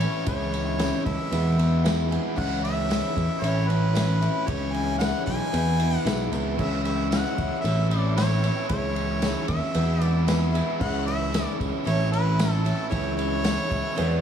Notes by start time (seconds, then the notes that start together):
Already playing: E3 E4 A4 C#5 E5
0.00 A3 C#4 E4, ride
0.25 C#2 C#3 E3 G#3 C#4 E4 G#4 C#5 E5, kick, ride
0.29 E4
0.53 G#3 C#4 E4, ride
0.79 C#3 E3 G#3 C#4 E4 G#4 C#5 E5, snare, ride, tambourine
1.05 C#2 G#3 C#4 E4 E5, kick, ride
1.31 E2 B2 E3 G#3 B3 E4 G#4 B4 E5, ride
1.57 E2 B2 E3 G#3 B3 E4, ride
1.83 E3 G#3 B3 E4 G#4 B4 E5 F#5, snare, ride, tambourine
2.10 E3 G#3 B3 E4 G#5, ride
2.36 C#2 C#3 E3 G#3 C#4 E4 G#4 C#5 E5 F#5, kick, crash
2.63 G#3 C#4 E4 E5, ride
2.88 C#3 E3 G#3 C#4 E4 G#4 C#5 E5, snare, ride, tambourine
3.16 E2 G#3 C#4 E4, kick, ride
3.41 A1 A2 E3 A3 C#4 E4 A4 C#5 E5, ride
3.45 E4
3.68 A2 E3 A3 C#4 E4 B4, ride
3.93 E3 A3 C#4 E4 A4 C#5 E5, ride, tambourine
3.97 E4, snare
4.21 A3 C#4 E4, ride
4.46 C#2 C#3 E3 G#3 C#4 E4 G#4 C#5 E5, kick, ride
4.73 G#3 C#4 E4 G#5, ride
4.98 C#3 E3 G#3 C#4 E4 G#4 C#5 E5 F#5, snare, ride, tambourine
5.26 B1 G#3 C#4 E4 G#5, kick, ride
5.51 E2 B2 E3 G#3 B3 E4 G#4 B4 E5, ride
5.55 E4
5.80 E2 B2 E3 G#3 B3 E4, ride
5.97 F#5
6.05 B1 E3 G#3 B3 E4 G#4 B4 E5, snare, ride, tambourine
6.32 C#2 E3 G#3 B3 E4, ride
6.56 C#2 C#3 E3 G#3 C#4 E4 G#4 C#5 E5 C#6 E6, kick, crash
6.61 E4
6.84 C#4 E4 E5, ride
6.88 G#3
7.10 C#3 E3 G#3 C#4 E4 G#4 C#5 E5 F#5, snare, ride, tambourine
7.38 C#2 G#3 C#4 E4, kick, ride
7.61 A1 A2 E4 A4 C#5 E5, ride
7.65 E3 A3 C#4 E4
7.89 E3 A3 C#4 E4 D5, ride
7.93 A2
8.15 E3 A3 C#4 E4 A4 C#5 E5, snare, ride, tambourine
8.20 E4
8.43 A3 C#4 E4, ride
8.68 C#2 C#3 E3 G#3 C#4 E4 G#4 C#5 E5, kick, ride
8.96 G#3 C#4 E4, ride
9.22 C#3 E3 G#3 C#4 E4 G#4 C#5 E5, snare, ride, tambourine
9.48 D#2 G#3 C#4 E4 E5, kick, ride
9.74 E2 B2 E3 G#3 B3 E4 G#4 B4 E5 B5 E6, ride
10.01 E2 B2 E3 G#3 B3 E4 D5, ride
10.27 E3 G#3 B3 E4 G#4 B4 E5, snare, ride, tambourine
10.53 E3 G#3 B3 E4, ride
10.79 C#2 C#3 E3 G#3 C#4 E4 G#4 C#5 E5 F#5 C#6, kick, crash
11.06 G#3 C#4 E4 E5, ride
11.32 C#3 E3 G#3 C#4 E4 G#4 C#5 E5, snare, ride, tambourine
11.59 C#2 G#3 C#4 E4, kick, ride
11.86 A1 A2 E3 A3 C#4 E4 A4 C#5 E5, ride
12.12 A2 E3 A3 C#4 E4 B4, ride
12.38 E3 A3 C#4 E4 A4 C#5 E5, snare, ride, tambourine
12.51 A4
12.63 A3 C#4 E4 A4, ride
12.89 C#2 C#3 E3 G#3 C#4 E4 G#4 C#5 E5 C#6, kick, ride
13.16 G#3 C#4 E4 C#5, ride
13.43 C#3 E3 G#3 C#4 E4 G#4 C#5 F#5, snare, ride, tambourine
13.70 C#2 G#3 C#4 E4, kick, ride
13.96 E2 B2 E3 G#3 B3 E4 G#4 B4 D5 E5 B5, ride